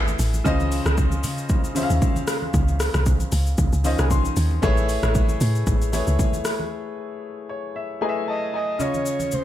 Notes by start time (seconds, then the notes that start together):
Already playing: G#1 A3 E4 G#4 B4 E5
0.07 high conga, shaker
0.19 A1, open hi-hat, shaker
0.34 high conga, shaker
0.44 C#2 C#3 C#4 F4 C5 D#5, kick, low conga, shaker
0.60 high conga, shaker
0.72 open hi-hat, shaker
0.85 C#2, cross-stick, high conga, shaker
0.98 kick, low conga, shaker
1.11 high conga, shaker
1.24 C#3, open hi-hat, low conga, shaker
1.38 shaker
1.49 C#2, kick, shaker
1.64 shaker
1.75 C#3 C#4 F4 C5 E5, open hi-hat, high conga, shaker
1.83 F5
1.90 D#2, shaker
2.02 kick, low conga, shaker
2.16 high conga, shaker
2.27 cross-stick, open hi-hat, shaker
2.42 high conga
2.54 C#2, kick, low conga, shaker
2.68 high conga, shaker
2.80 cross-stick, open hi-hat, shaker
2.94 C2, cross-stick, high conga, shaker
3.06 kick, low conga, shaker
3.20 high conga, shaker
3.32 C#2, open hi-hat, low conga, shaker
3.47 shaker
3.58 C#2, kick, shaker
3.73 C#2, shaker
3.84 D#3 C#4 F4 C5 D#5 F5, open hi-hat, high conga, shaker
3.99 C2 G#5, cross-stick, shaker
4.10 C6, kick, low conga, shaker
4.25 high conga, shaker
4.36 D#2, open hi-hat, shaker
4.51 high conga
4.62 A1 A3 E4 G#4 B4 C#5, kick, low conga, shaker
4.77 high conga, shaker
4.89 open hi-hat, shaker
5.03 A1, cross-stick, high conga, shaker
5.15 kick, low conga, shaker
5.28 high conga, shaker
5.41 A2, open hi-hat, low conga, shaker
5.55 shaker
5.67 A1, kick, shaker
5.82 shaker
5.92 A3 E4 G#4 B4 C#5, open hi-hat, high conga, shaker
6.07 C#2, shaker
6.19 kick, low conga, shaker
6.33 high conga, shaker
6.45 cross-stick, open hi-hat, shaker
6.60 high conga
7.49 C#5
7.76 E5
8.01 A3 E4 G#4 B4 D#5 G#5
8.09 E5
8.28 D#5 A5
8.54 D#5 G#5
8.79 C#3 C#4 F4 C#5 D#5, low conga, shaker
8.94 high conga, shaker
9.06 shaker
9.20 high conga, shaker
9.32 C5, low conga, shaker